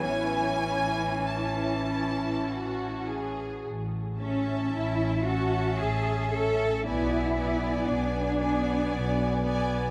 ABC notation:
X:1
M:3/4
L:1/8
Q:1/4=56
K:A
V:1 name="Violin section"
g2 a3 z | z a2 a2 a | g g2 g2 g |]
V:2 name="Violin section"
[Ec]2 C E F G | z e2 e2 e | d d2 d2 d |]
V:3 name="Cello section"
E4- E z | z C E F G A | E2 D3 z |]
V:4 name="Viola section"
[E,C]6 | z C2 C2 C | B, B,2 B,2 B, |]
V:5 name="Double bass section" clef=bass
A,,,6 | A,,,2 A,,,2 A,,,2 | B,,,2 B,,,2 B,,,2 |]